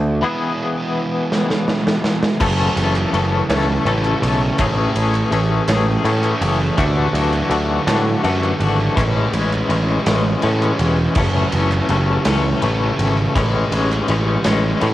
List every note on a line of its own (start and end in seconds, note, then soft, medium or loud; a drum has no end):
0.00 0.22 D2 loud
0.00 0.20 D3 medium
0.00 0.20 A3 medium
0.00 0.20 D4 medium
0.00 0.21 D4 loud
0.00 0.21 F#4 medium
0.00 0.21 F#4 loud
0.21 2.38 E3 medium
0.21 2.39 E3 medium
0.21 2.39 G#3 medium
0.21 2.39 B3 medium
0.21 2.40 B3 loud
0.21 2.40 E4 medium
0.21 2.40 E4 loud
0.21 2.40 G#4 loud
1.32 snare medium
1.50 snare medium
1.68 snare medium
1.87 snare medium
2.04 snare medium
2.23 snare loud
2.40 2.68 F#1 medium
2.40 4.23 F#2 medium
2.40 3.13 E3 medium
2.40 2.78 A3 loud
2.40 2.77 C#4 medium
2.40 2.76 A4 loud
2.40 kick loud
2.40 clap loud
2.40 crash loud
2.76 3.04 F#1 medium
2.76 3.50 E3 medium
2.76 3.13 A3 medium
2.76 3.14 C#4 medium
2.76 3.15 A4 medium
2.76 ride medium
2.96 clap medium
3.13 3.41 F#1 medium
3.13 4.22 C#3 medium
3.13 3.85 E3 medium
3.13 3.51 A3 medium
3.13 3.49 C#4 medium
3.13 3.49 A4 medium
3.13 ride medium
3.49 3.77 C#2 medium
3.49 5.33 E3 medium
3.49 3.86 A3 medium
3.49 3.86 C#4 medium
3.49 3.87 A4 medium
3.49 snare loud
3.49 clap loud
3.49 ride medium
3.85 4.13 A1 loud
3.85 4.58 E3 medium
3.85 4.24 A3 medium
3.85 6.05 A3 medium
3.85 4.22 C#4 medium
3.85 4.21 A4 medium
3.85 clap soft
3.85 ride medium
4.05 clap medium
4.22 4.50 B1 loud
4.22 4.60 C#3 medium
4.22 4.59 A3 medium
4.22 4.58 C#4 medium
4.22 4.60 A4 medium
4.22 ride medium
4.41 clap soft
4.58 4.87 A1 medium
4.58 6.42 A2 medium
4.58 5.31 E3 medium
4.58 4.97 A3 loud
4.58 4.96 C#4 loud
4.58 4.95 G#4 loud
4.58 kick loud
4.58 clap loud
4.58 ride loud
4.95 5.23 A1 medium
4.95 5.32 A3 medium
4.95 5.31 C#4 medium
4.95 5.33 G#4 medium
4.95 ride medium
5.14 clap medium
5.31 5.59 A1 medium
5.31 6.04 E3 medium
5.31 6.41 E3 medium
5.31 5.70 A3 medium
5.31 5.69 C#4 medium
5.31 5.68 G#4 medium
5.31 ride medium
5.68 5.96 A1 medium
5.68 6.05 A3 medium
5.68 6.04 C#4 medium
5.68 6.05 G#4 medium
5.68 snare loud
5.68 clap loud
5.68 ride loud
6.04 6.32 A2 medium
6.04 6.77 E3 medium
6.04 6.42 A3 medium
6.04 6.40 C#4 medium
6.04 6.79 C#4 medium
6.04 6.40 G#4 medium
6.04 clap soft
6.04 ride medium
6.23 clap medium
6.41 6.69 F#1 loud
6.41 6.77 E3 medium
6.41 6.78 A3 medium
6.41 6.76 C#4 medium
6.41 6.76 G#4 medium
6.41 ride medium
6.61 clap soft
6.77 7.05 D2 loud
6.77 7.50 D3 medium
6.77 7.49 E3 medium
6.77 7.16 A3 loud
6.77 7.14 D4 medium
6.77 7.13 F#4 loud
6.77 kick loud
6.77 clap loud
6.77 ride medium
7.13 7.41 D2 medium
7.13 7.87 F#3 medium
7.13 7.50 A3 medium
7.13 7.50 D4 medium
7.13 7.50 F#4 medium
7.13 ride medium
7.33 clap medium
7.50 7.78 D2 medium
7.50 8.60 D3 medium
7.50 8.23 E3 medium
7.50 7.88 A3 medium
7.50 7.86 D4 medium
7.50 7.85 F#4 medium
7.50 ride medium
7.86 8.15 A2 loud
7.86 8.98 F#3 medium
7.86 8.23 A3 medium
7.86 8.23 D4 medium
7.86 8.24 F#4 medium
7.86 snare loud
7.86 clap loud
7.86 ride loud
8.23 8.52 F#2 medium
8.23 8.96 E3 medium
8.23 8.62 A3 medium
8.23 9.37 A3 medium
8.23 8.59 D4 medium
8.23 8.59 F#4 medium
8.23 clap soft
8.23 ride medium
8.44 clap medium
8.60 8.88 G#1 loud
8.60 8.98 D3 medium
8.60 8.97 A3 medium
8.60 8.95 D4 medium
8.60 8.95 F#4 medium
8.60 ride medium
8.81 clap soft
8.96 9.24 A1 medium
8.96 10.80 A2 medium
8.96 9.69 E3 medium
8.96 9.34 G#3 medium
8.96 9.33 C#4 loud
8.96 kick loud
8.96 clap loud
8.96 ride loud
9.17 clap soft
9.33 9.61 A1 medium
9.33 10.06 G#3 medium
9.33 9.69 G#3 medium
9.33 9.71 C#4 medium
9.33 ride medium
9.53 clap medium
9.69 9.97 A1 medium
9.69 10.42 E3 medium
9.69 10.79 E3 medium
9.69 10.07 G#3 medium
9.69 10.06 C#4 medium
9.69 clap soft
9.69 ride medium
10.06 10.34 A1 medium
10.06 11.17 G#3 medium
10.06 10.42 G#3 medium
10.06 10.44 C#4 medium
10.06 snare loud
10.06 clap medium
10.06 ride medium
10.42 10.71 A2 medium
10.42 11.16 E3 medium
10.42 10.80 G#3 medium
10.42 12.62 C#4 medium
10.42 10.79 C#4 medium
10.42 ride medium
10.63 clap medium
10.79 11.07 E1 medium
10.79 11.20 E3 medium
10.79 11.15 G#3 medium
10.79 11.18 C#4 medium
10.79 clap soft
10.79 ride medium
11.15 11.43 F#1 medium
11.15 12.99 F#2 medium
11.15 11.89 E3 medium
11.15 11.54 A3 loud
11.15 11.52 C#4 loud
11.15 kick loud
11.15 clap medium
11.15 crash medium
11.52 11.80 F#1 medium
11.52 12.25 E3 medium
11.52 11.90 A3 medium
11.52 11.91 C#4 medium
11.52 ride medium
11.72 clap medium
11.89 12.17 F#1 loud
11.89 12.99 C#3 medium
11.89 12.62 E3 medium
11.89 12.28 A3 medium
11.89 12.25 C#4 medium
11.89 ride medium
12.25 12.53 C#2 medium
12.25 13.72 E3 medium
12.25 12.63 A3 medium
12.25 12.63 C#4 medium
12.25 snare loud
12.25 clap loud
12.25 ride loud
12.62 12.90 A1 loud
12.62 13.35 E3 medium
12.62 13.75 A3 medium
12.62 13.00 A3 medium
12.62 12.98 C#4 medium
12.62 clap soft
12.62 ride medium
12.99 13.26 G#1 medium
12.99 13.36 C#3 medium
12.99 13.36 A3 medium
12.99 13.33 C#4 medium
12.99 ride medium
13.18 clap soft
13.35 13.63 A1 medium
13.35 14.94 A2 medium
13.35 14.08 E3 medium
13.35 13.72 G#3 medium
13.35 13.70 C#4 medium
13.35 kick loud
13.35 clap medium
13.35 ride loud
13.71 13.99 A1 medium
13.71 14.43 G#3 medium
13.71 14.08 G#3 medium
13.71 14.09 C#4 medium
13.71 ride medium
13.92 clap medium
14.08 14.36 A1 medium
14.08 14.94 E3 medium
14.08 14.80 E3 medium
14.08 14.45 G#3 medium
14.08 14.44 C#4 medium
14.08 ride medium
14.44 14.73 A1 medium
14.44 14.94 G#3 medium
14.44 14.80 G#3 medium
14.44 14.82 C#4 medium
14.44 snare loud
14.44 clap medium
14.44 ride loud
14.80 14.94 A2 medium
14.80 14.94 E3 medium
14.80 14.94 G#3 medium
14.80 14.94 C#4 medium
14.80 clap soft
14.80 ride medium